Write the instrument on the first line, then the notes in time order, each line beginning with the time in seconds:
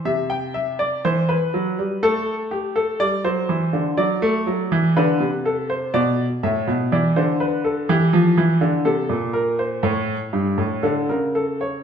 grand piano
0.05 C3 E5
0.30 G5
0.54 E5
0.79 D5
1.05 E3 C5
1.29 B4
1.54 F#3
1.79 G3
2.03 A3 A4
2.51 G4
2.76 A4
3.00 G3 D5
3.24 F#3 C5
3.49 E3
3.73 D3
3.97 F#3 D5
4.22 A3
4.47 F#3
4.72 E3
4.97 D3 B4
5.20 C3
5.45 A4
5.70 C5
5.94 B2 D5
6.43 A2 E5
6.67 B2
6.92 E3 D5
7.16 D3 C5
7.40 B4
7.64 A4
7.89 E3 G4
8.13 F3
8.37 E3
8.61 D3
8.85 C3 A4
9.09 A#2
9.33 A#4
9.59 C5
9.83 A2 C#5
10.33 G2
10.58 A2
10.83 D3 A4
11.09 C#3 A#4
11.35 A4
11.61 C#5